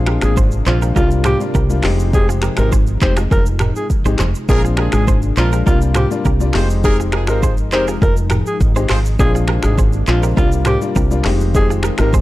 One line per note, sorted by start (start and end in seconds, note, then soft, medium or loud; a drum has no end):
0.00 0.17 A#1 loud
0.00 9.15 C3 medium
0.00 0.59 G#3 loud
0.00 0.94 G#3 medium
0.00 1.82 A#3 medium
0.00 0.60 C4 medium
0.00 0.60 D4 medium
0.00 0.95 D4 medium
0.00 0.60 F4 loud
0.06 0.18 G4 medium
0.06 0.18 A#4 medium
0.06 finger snap medium
0.06 cross-stick loud
0.21 0.60 G#1 loud
0.21 0.36 G#4 medium
0.21 finger snap medium
0.21 cross-stick loud
0.21 shaker soft
0.37 0.48 G#4 medium
0.37 0.47 C5 medium
0.37 kick loud
0.37 shaker medium
0.51 shaker soft
0.66 0.92 A#1 loud
0.66 0.93 G#3 medium
0.66 0.93 C4 medium
0.66 0.94 D4 medium
0.66 0.94 F4 medium
0.66 0.80 F4 medium
0.66 0.77 G#4 medium
0.66 0.77 C5 medium
0.66 clap loud
0.66 shaker medium
0.82 0.92 G4 medium
0.82 0.91 A#4 medium
0.82 shaker medium
0.96 1.34 C2 loud
0.96 1.37 G3 medium
0.96 1.83 G3 medium
0.96 1.37 A#3 medium
0.96 1.37 D4 medium
0.96 1.83 F4 medium
0.96 1.37 F4 loud
0.96 1.09 F4 medium
0.96 1.07 G4 medium
0.96 1.06 A#4 medium
0.96 kick loud
0.96 shaker medium
1.11 shaker medium
1.24 1.39 G4 medium
1.24 1.36 G#4 medium
1.24 1.36 C5 medium
1.24 finger snap medium
1.24 cross-stick loud
1.24 mid tom medium
1.24 shaker medium
1.40 1.55 G3 medium
1.40 1.56 A#3 medium
1.40 1.56 D4 medium
1.40 1.56 F4 medium
1.40 shaker medium
1.55 1.80 C2 medium
1.55 1.75 G4 medium
1.55 1.74 A#4 medium
1.55 kick medium
1.55 shaker medium
1.70 1.85 G3 medium
1.70 1.85 A#3 medium
1.70 1.85 D4 medium
1.70 1.85 F4 medium
1.70 shaker medium
1.83 2.48 F1 loud
1.83 4.46 F3 medium
1.83 2.11 G#3 medium
1.83 4.46 G#3 medium
1.83 2.11 C4 medium
1.83 4.46 D#4 medium
1.83 2.11 D#4 medium
1.83 2.11 G4 loud
1.83 finger snap medium
1.83 cross-stick medium
1.83 clap medium
1.83 open hi-hat medium
1.99 shaker medium
2.13 2.54 G#3 loud
2.13 2.54 C4 medium
2.13 2.54 D#4 medium
2.13 2.55 G4 loud
2.13 2.27 G#4 medium
2.13 kick loud
2.13 shaker medium
2.29 2.39 F4 medium
2.29 2.38 G#4 medium
2.29 shaker medium
2.42 2.54 G4 medium
2.42 2.53 A#4 medium
2.42 finger snap medium
2.42 cross-stick loud
2.42 shaker medium
2.57 2.96 G#1 medium
2.57 2.73 G#3 medium
2.57 2.73 C4 medium
2.57 2.73 D#4 medium
2.57 2.73 G4 medium
2.57 2.71 A#4 medium
2.57 finger snap medium
2.57 cross-stick loud
2.57 shaker medium
2.72 2.83 G#4 medium
2.72 2.83 C5 medium
2.72 kick loud
2.72 shaker medium
2.87 shaker soft
3.01 3.27 F1 medium
3.01 3.18 G#3 medium
3.01 3.18 C4 medium
3.01 3.18 D#4 medium
3.01 3.18 G4 medium
3.01 3.13 G#4 medium
3.01 3.12 C5 medium
3.01 3.15 C5 medium
3.01 kick loud
3.01 clap loud
3.01 shaker medium
3.17 3.27 F4 medium
3.17 3.26 G#4 medium
3.17 finger snap medium
3.17 cross-stick loud
3.17 shaker medium
3.31 3.70 F1 loud
3.31 3.42 F4 medium
3.31 3.41 G#4 medium
3.31 3.45 A#4 medium
3.31 kick loud
3.31 shaker medium
3.46 shaker medium
3.59 3.71 G4 medium
3.59 3.71 A#4 medium
3.59 finger snap medium
3.59 cross-stick loud
3.59 mid tom medium
3.59 shaker medium
3.76 3.88 G#4 medium
3.76 shaker medium
3.90 kick medium
3.90 shaker medium
4.05 4.17 G#1 medium
4.05 4.20 G#3 medium
4.05 4.20 C4 medium
4.05 4.20 D#4 medium
4.05 4.20 G4 medium
4.05 4.15 G#4 medium
4.05 4.15 C5 medium
4.05 shaker medium
4.18 4.33 F1 medium
4.18 4.30 G#4 medium
4.18 4.30 C5 medium
4.18 finger snap medium
4.18 cross-stick medium
4.18 clap medium
4.18 shaker medium
4.35 shaker medium
4.49 4.87 A#1 loud
4.49 5.65 G#3 medium
4.49 5.30 G#3 loud
4.49 6.52 A#3 medium
4.49 5.30 C4 medium
4.49 4.61 D4 loud
4.49 5.65 D4 medium
4.49 5.30 D4 medium
4.49 4.61 F4 loud
4.49 5.30 F4 loud
4.49 4.62 G#4 loud
4.49 4.61 A#4 loud
4.49 kick loud
4.49 shaker medium
4.65 4.74 F4 medium
4.65 4.74 G#4 medium
4.65 shaker medium
4.77 4.90 D4 medium
4.77 4.90 F4 medium
4.77 4.89 G4 medium
4.77 4.90 G#4 loud
4.77 4.89 A#4 loud
4.77 finger snap medium
4.77 cross-stick loud
4.92 5.31 G#1 loud
4.92 5.17 D4 medium
4.92 5.17 F4 medium
4.92 5.17 G#4 medium
4.92 5.06 G#4 medium
4.92 finger snap medium
4.92 cross-stick loud
4.92 shaker soft
5.07 5.19 G#4 medium
5.07 5.18 C5 medium
5.07 kick loud
5.07 shaker medium
5.22 shaker soft
5.37 5.62 A#1 loud
5.37 5.64 G#3 medium
5.37 5.64 C4 medium
5.37 5.61 D4 medium
5.37 5.64 D4 medium
5.37 5.61 F4 medium
5.37 5.64 F4 medium
5.37 5.51 F4 medium
5.37 5.48 G#4 medium
5.37 5.60 A#4 medium
5.37 5.47 C5 medium
5.37 clap loud
5.37 shaker medium
5.52 5.62 G4 medium
5.52 5.62 A#4 medium
5.52 shaker medium
5.66 6.05 C2 loud
5.66 6.07 G3 loud
5.66 6.54 G3 medium
5.66 6.07 A#3 medium
5.66 6.07 D4 medium
5.66 6.54 F4 medium
5.66 6.08 F4 loud
5.66 5.80 F4 medium
5.66 5.77 G4 medium
5.66 5.77 A#4 medium
5.66 kick loud
5.66 shaker medium
5.81 shaker medium
5.94 6.09 G4 medium
5.94 6.07 G#4 medium
5.94 6.06 C5 medium
5.94 finger snap medium
5.94 cross-stick loud
5.94 mid tom medium
5.94 shaker medium
6.11 6.26 G3 medium
6.11 6.26 A#3 medium
6.11 6.26 D4 medium
6.11 6.26 F4 medium
6.11 shaker medium
6.25 6.50 C2 medium
6.25 6.45 G4 medium
6.25 6.45 A#4 medium
6.25 kick medium
6.25 shaker medium
6.40 6.55 G3 medium
6.40 6.55 A#3 medium
6.40 6.56 D4 medium
6.40 6.56 F4 medium
6.40 shaker medium
6.53 7.29 F1 medium
6.53 9.17 F3 medium
6.53 6.82 G#3 medium
6.53 9.17 G#3 medium
6.53 6.82 C4 medium
6.53 9.17 D#4 loud
6.53 6.82 D#4 medium
6.53 6.67 F4 medium
6.53 6.82 G4 loud
6.53 6.67 G#4 medium
6.53 6.67 C5 loud
6.53 finger snap medium
6.53 cross-stick medium
6.53 clap medium
6.53 open hi-hat medium
6.70 shaker medium
6.84 7.25 G#3 loud
6.84 7.25 C4 medium
6.84 6.96 D#4 loud
6.84 7.25 D#4 medium
6.84 6.96 G4 loud
6.84 7.25 G4 loud
6.84 6.98 G#4 loud
6.84 6.96 A#4 loud
6.84 kick loud
6.84 shaker medium
7.00 7.10 F4 medium
7.00 7.09 G#4 medium
7.00 shaker medium
7.12 7.26 D#4 medium
7.12 7.26 F4 medium
7.12 7.24 G4 medium
7.12 7.26 G#4 loud
7.12 7.24 A#4 medium
7.12 finger snap medium
7.12 cross-stick loud
7.27 7.72 G#1 loud
7.27 7.44 G#3 medium
7.27 7.44 C4 medium
7.27 7.44 D#4 medium
7.27 7.52 F4 medium
7.27 7.44 G4 medium
7.27 7.52 G#4 medium
7.27 7.41 A#4 medium
7.27 7.52 C5 medium
7.27 finger snap medium
7.27 cross-stick loud
7.27 shaker soft
7.43 7.54 G#4 medium
7.43 7.53 C5 medium
7.43 kick loud
7.43 shaker medium
7.57 shaker soft
7.72 7.98 F1 loud
7.72 7.88 G#3 medium
7.72 7.88 C4 medium
7.72 7.96 D#4 medium
7.72 7.89 D#4 medium
7.72 7.96 G4 medium
7.72 7.89 G4 medium
7.72 7.83 G#4 medium
7.72 7.96 A#4 medium
7.72 7.83 C5 medium
7.72 7.86 C5 medium
7.72 clap loud
7.72 shaker medium
7.88 7.98 F4 medium
7.88 7.97 G#4 medium
7.88 shaker medium
8.02 8.40 F1 loud
8.02 8.13 F4 medium
8.02 8.12 G#4 medium
8.02 8.15 A#4 medium
8.02 kick loud
8.02 shaker medium
8.17 shaker medium
8.30 8.42 G4 medium
8.30 8.41 A#4 medium
8.30 finger snap medium
8.30 cross-stick loud
8.30 mid tom medium
8.30 shaker medium
8.46 8.59 G#4 medium
8.46 shaker medium
8.61 8.86 G#1 loud
8.61 kick medium
8.61 shaker medium
8.76 8.91 G#3 medium
8.76 8.91 C4 medium
8.76 8.91 D#4 medium
8.76 8.91 G4 medium
8.76 8.86 G#4 medium
8.76 8.85 C5 medium
8.76 shaker medium
8.89 9.15 G#1 medium
8.89 8.99 F4 medium
8.89 8.99 G#4 medium
8.89 9.01 G#4 medium
8.89 8.99 C5 loud
8.89 9.00 C5 medium
8.89 finger snap medium
8.89 cross-stick medium
8.89 clap medium
8.89 open hi-hat medium
9.05 shaker medium
9.19 9.58 A#1 loud
9.19 11.23 C3 medium
9.19 10.36 G#3 medium
9.19 10.01 G#3 loud
9.19 11.23 A#3 medium
9.19 10.01 C4 medium
9.19 10.36 D4 medium
9.19 10.01 D4 medium
9.19 10.01 F4 loud
9.19 9.33 G#4 loud
9.19 kick loud
9.19 shaker medium
9.35 9.45 F4 medium
9.35 9.44 G#4 medium
9.35 shaker medium
9.48 9.60 G4 medium
9.48 9.59 A#4 loud
9.48 finger snap medium
9.48 cross-stick loud
9.63 10.01 G#1 loud
9.63 9.77 G#4 medium
9.63 finger snap medium
9.63 cross-stick loud
9.63 shaker medium
9.78 9.89 G#4 medium
9.78 9.89 C5 medium
9.78 kick loud
9.78 shaker medium
9.93 shaker soft
10.07 10.33 A#1 loud
10.07 10.35 G#3 medium
10.07 10.35 C4 medium
10.07 10.35 D4 medium
10.07 10.35 F4 medium
10.07 10.21 F4 medium
10.07 10.18 G#4 medium
10.07 10.18 C5 medium
10.07 clap loud
10.07 shaker medium
10.23 10.33 G4 medium
10.23 10.32 A#4 medium
10.23 shaker medium
10.37 10.75 C2 loud
10.37 10.78 G3 loud
10.37 11.24 G3 medium
10.37 10.78 A#3 medium
10.37 10.78 D4 medium
10.37 12.21 F4 medium
10.37 10.78 F4 loud
10.37 10.51 F4 medium
10.37 10.48 G4 medium
10.37 10.47 A#4 medium
10.37 kick loud
10.37 shaker medium
10.52 shaker medium
10.65 10.80 G4 medium
10.65 10.77 G#4 medium
10.65 10.77 C5 medium
10.65 finger snap medium
10.65 cross-stick loud
10.65 mid tom medium
10.65 shaker medium
10.82 10.97 G3 medium
10.82 10.97 A#3 medium
10.82 10.97 D4 medium
10.82 10.97 F4 medium
10.82 shaker medium
10.96 11.21 C2 medium
10.96 11.16 G4 medium
10.96 11.15 A#4 medium
10.96 kick medium
10.96 shaker medium
11.11 11.26 G3 medium
11.11 11.26 A#3 medium
11.11 11.26 D4 medium
11.11 11.26 F4 medium
11.11 shaker medium
11.24 11.89 F1 loud
11.24 12.21 D#3 medium
11.24 11.52 G#3 medium
11.24 12.21 G#3 medium
11.24 11.52 C4 medium
11.24 12.21 C4 medium
11.24 11.52 D#4 medium
11.24 11.53 G4 loud
11.24 finger snap medium
11.24 cross-stick medium
11.24 clap medium
11.24 open hi-hat medium
11.41 shaker medium
11.54 11.96 G#3 loud
11.54 11.96 C4 medium
11.54 11.96 D#4 medium
11.54 11.96 G4 loud
11.54 11.68 G#4 loud
11.54 kick loud
11.54 shaker medium
11.70 11.80 F4 medium
11.70 11.80 G#4 medium
11.70 shaker medium
11.83 11.95 G4 medium
11.83 11.94 A#4 medium
11.83 finger snap medium
11.83 cross-stick medium
11.83 shaker medium
11.98 12.21 G#1 medium
11.98 12.14 G#3 medium
11.98 12.14 C4 medium
11.98 12.14 D#4 medium
11.98 12.15 G4 medium
11.98 12.12 A#4 medium
11.98 finger snap medium
11.98 cross-stick loud
11.98 shaker medium
12.13 12.21 G#4 medium
12.13 12.21 C5 medium
12.13 kick loud
12.13 shaker medium